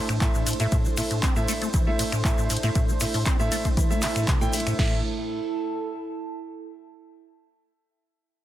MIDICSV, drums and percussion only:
0, 0, Header, 1, 2, 480
1, 0, Start_track
1, 0, Key_signature, 0, "minor"
1, 0, Tempo, 508475
1, 680, Time_signature, 4, 2, 24, 8
1, 7975, End_track
2, 0, Start_track
2, 0, Title_t, "Drums"
2, 85, Note_on_c, 9, 26, 70
2, 85, Note_on_c, 9, 42, 53
2, 87, Note_on_c, 9, 82, 35
2, 180, Note_off_c, 9, 26, 0
2, 180, Note_off_c, 9, 42, 0
2, 182, Note_off_c, 9, 82, 0
2, 200, Note_on_c, 9, 39, 111
2, 201, Note_on_c, 9, 36, 120
2, 202, Note_on_c, 9, 82, 48
2, 295, Note_off_c, 9, 36, 0
2, 295, Note_off_c, 9, 39, 0
2, 297, Note_off_c, 9, 82, 0
2, 325, Note_on_c, 9, 82, 39
2, 419, Note_off_c, 9, 82, 0
2, 439, Note_on_c, 9, 46, 111
2, 439, Note_on_c, 9, 51, 86
2, 443, Note_on_c, 9, 82, 92
2, 502, Note_on_c, 9, 42, 69
2, 534, Note_off_c, 9, 46, 0
2, 534, Note_off_c, 9, 51, 0
2, 538, Note_off_c, 9, 82, 0
2, 564, Note_off_c, 9, 42, 0
2, 564, Note_on_c, 9, 42, 56
2, 568, Note_on_c, 9, 82, 42
2, 659, Note_off_c, 9, 42, 0
2, 663, Note_off_c, 9, 82, 0
2, 679, Note_on_c, 9, 82, 52
2, 680, Note_on_c, 9, 42, 69
2, 681, Note_on_c, 9, 36, 112
2, 774, Note_off_c, 9, 42, 0
2, 774, Note_off_c, 9, 82, 0
2, 775, Note_off_c, 9, 36, 0
2, 801, Note_on_c, 9, 82, 34
2, 896, Note_off_c, 9, 82, 0
2, 918, Note_on_c, 9, 82, 93
2, 920, Note_on_c, 9, 26, 71
2, 920, Note_on_c, 9, 46, 107
2, 920, Note_on_c, 9, 51, 86
2, 1012, Note_off_c, 9, 82, 0
2, 1014, Note_off_c, 9, 26, 0
2, 1014, Note_off_c, 9, 46, 0
2, 1014, Note_off_c, 9, 51, 0
2, 1042, Note_on_c, 9, 82, 38
2, 1046, Note_on_c, 9, 42, 56
2, 1136, Note_off_c, 9, 82, 0
2, 1140, Note_off_c, 9, 42, 0
2, 1160, Note_on_c, 9, 42, 68
2, 1161, Note_on_c, 9, 36, 116
2, 1161, Note_on_c, 9, 39, 119
2, 1162, Note_on_c, 9, 82, 53
2, 1255, Note_off_c, 9, 36, 0
2, 1255, Note_off_c, 9, 39, 0
2, 1255, Note_off_c, 9, 42, 0
2, 1256, Note_off_c, 9, 82, 0
2, 1284, Note_on_c, 9, 82, 37
2, 1378, Note_off_c, 9, 82, 0
2, 1401, Note_on_c, 9, 46, 101
2, 1401, Note_on_c, 9, 51, 84
2, 1402, Note_on_c, 9, 82, 96
2, 1495, Note_off_c, 9, 46, 0
2, 1495, Note_off_c, 9, 51, 0
2, 1497, Note_off_c, 9, 82, 0
2, 1526, Note_on_c, 9, 42, 57
2, 1536, Note_on_c, 9, 82, 43
2, 1620, Note_off_c, 9, 42, 0
2, 1631, Note_off_c, 9, 82, 0
2, 1639, Note_on_c, 9, 82, 55
2, 1640, Note_on_c, 9, 42, 68
2, 1641, Note_on_c, 9, 36, 112
2, 1734, Note_off_c, 9, 82, 0
2, 1735, Note_off_c, 9, 36, 0
2, 1735, Note_off_c, 9, 42, 0
2, 1880, Note_on_c, 9, 46, 111
2, 1880, Note_on_c, 9, 51, 88
2, 1886, Note_on_c, 9, 82, 95
2, 1975, Note_off_c, 9, 46, 0
2, 1975, Note_off_c, 9, 51, 0
2, 1980, Note_off_c, 9, 82, 0
2, 2005, Note_on_c, 9, 26, 69
2, 2005, Note_on_c, 9, 42, 54
2, 2011, Note_on_c, 9, 82, 41
2, 2100, Note_off_c, 9, 26, 0
2, 2100, Note_off_c, 9, 42, 0
2, 2105, Note_off_c, 9, 82, 0
2, 2120, Note_on_c, 9, 39, 121
2, 2121, Note_on_c, 9, 36, 117
2, 2125, Note_on_c, 9, 82, 55
2, 2215, Note_off_c, 9, 36, 0
2, 2215, Note_off_c, 9, 39, 0
2, 2219, Note_off_c, 9, 82, 0
2, 2247, Note_on_c, 9, 82, 35
2, 2341, Note_off_c, 9, 82, 0
2, 2360, Note_on_c, 9, 46, 105
2, 2360, Note_on_c, 9, 51, 85
2, 2362, Note_on_c, 9, 82, 92
2, 2422, Note_on_c, 9, 42, 70
2, 2454, Note_off_c, 9, 46, 0
2, 2454, Note_off_c, 9, 51, 0
2, 2456, Note_off_c, 9, 82, 0
2, 2485, Note_off_c, 9, 42, 0
2, 2485, Note_on_c, 9, 42, 57
2, 2486, Note_on_c, 9, 82, 40
2, 2580, Note_off_c, 9, 42, 0
2, 2581, Note_off_c, 9, 82, 0
2, 2600, Note_on_c, 9, 36, 114
2, 2600, Note_on_c, 9, 42, 69
2, 2601, Note_on_c, 9, 82, 47
2, 2694, Note_off_c, 9, 42, 0
2, 2695, Note_off_c, 9, 36, 0
2, 2695, Note_off_c, 9, 82, 0
2, 2726, Note_on_c, 9, 82, 36
2, 2820, Note_off_c, 9, 82, 0
2, 2835, Note_on_c, 9, 82, 90
2, 2840, Note_on_c, 9, 26, 68
2, 2840, Note_on_c, 9, 46, 106
2, 2840, Note_on_c, 9, 51, 84
2, 2929, Note_off_c, 9, 82, 0
2, 2935, Note_off_c, 9, 26, 0
2, 2935, Note_off_c, 9, 46, 0
2, 2935, Note_off_c, 9, 51, 0
2, 2964, Note_on_c, 9, 82, 37
2, 2966, Note_on_c, 9, 46, 62
2, 3058, Note_off_c, 9, 82, 0
2, 3060, Note_off_c, 9, 46, 0
2, 3080, Note_on_c, 9, 42, 72
2, 3081, Note_on_c, 9, 36, 117
2, 3081, Note_on_c, 9, 39, 121
2, 3085, Note_on_c, 9, 82, 52
2, 3174, Note_off_c, 9, 42, 0
2, 3175, Note_off_c, 9, 36, 0
2, 3175, Note_off_c, 9, 39, 0
2, 3180, Note_off_c, 9, 82, 0
2, 3206, Note_on_c, 9, 82, 38
2, 3300, Note_off_c, 9, 82, 0
2, 3321, Note_on_c, 9, 46, 103
2, 3321, Note_on_c, 9, 51, 83
2, 3322, Note_on_c, 9, 82, 92
2, 3415, Note_off_c, 9, 46, 0
2, 3415, Note_off_c, 9, 51, 0
2, 3416, Note_off_c, 9, 82, 0
2, 3446, Note_on_c, 9, 36, 59
2, 3446, Note_on_c, 9, 42, 57
2, 3447, Note_on_c, 9, 82, 41
2, 3541, Note_off_c, 9, 36, 0
2, 3541, Note_off_c, 9, 42, 0
2, 3541, Note_off_c, 9, 82, 0
2, 3560, Note_on_c, 9, 42, 70
2, 3561, Note_on_c, 9, 36, 117
2, 3570, Note_on_c, 9, 82, 50
2, 3655, Note_off_c, 9, 36, 0
2, 3655, Note_off_c, 9, 42, 0
2, 3665, Note_off_c, 9, 82, 0
2, 3691, Note_on_c, 9, 82, 38
2, 3785, Note_off_c, 9, 82, 0
2, 3793, Note_on_c, 9, 82, 92
2, 3800, Note_on_c, 9, 46, 107
2, 3800, Note_on_c, 9, 51, 86
2, 3801, Note_on_c, 9, 39, 67
2, 3887, Note_off_c, 9, 82, 0
2, 3895, Note_off_c, 9, 39, 0
2, 3895, Note_off_c, 9, 46, 0
2, 3895, Note_off_c, 9, 51, 0
2, 3926, Note_on_c, 9, 26, 66
2, 3926, Note_on_c, 9, 42, 55
2, 3930, Note_on_c, 9, 82, 39
2, 4020, Note_off_c, 9, 26, 0
2, 4020, Note_off_c, 9, 42, 0
2, 4025, Note_off_c, 9, 82, 0
2, 4036, Note_on_c, 9, 82, 48
2, 4040, Note_on_c, 9, 42, 40
2, 4041, Note_on_c, 9, 36, 117
2, 4041, Note_on_c, 9, 39, 120
2, 4131, Note_off_c, 9, 82, 0
2, 4135, Note_off_c, 9, 36, 0
2, 4135, Note_off_c, 9, 42, 0
2, 4136, Note_off_c, 9, 39, 0
2, 4168, Note_on_c, 9, 82, 37
2, 4263, Note_off_c, 9, 82, 0
2, 4276, Note_on_c, 9, 82, 92
2, 4280, Note_on_c, 9, 46, 106
2, 4280, Note_on_c, 9, 51, 84
2, 4343, Note_on_c, 9, 42, 72
2, 4371, Note_off_c, 9, 82, 0
2, 4375, Note_off_c, 9, 46, 0
2, 4375, Note_off_c, 9, 51, 0
2, 4405, Note_off_c, 9, 42, 0
2, 4405, Note_on_c, 9, 26, 64
2, 4405, Note_on_c, 9, 42, 58
2, 4407, Note_on_c, 9, 82, 35
2, 4500, Note_off_c, 9, 26, 0
2, 4500, Note_off_c, 9, 42, 0
2, 4501, Note_off_c, 9, 82, 0
2, 4521, Note_on_c, 9, 36, 104
2, 4521, Note_on_c, 9, 38, 105
2, 4521, Note_on_c, 9, 49, 89
2, 4615, Note_off_c, 9, 36, 0
2, 4615, Note_off_c, 9, 38, 0
2, 4615, Note_off_c, 9, 49, 0
2, 7975, End_track
0, 0, End_of_file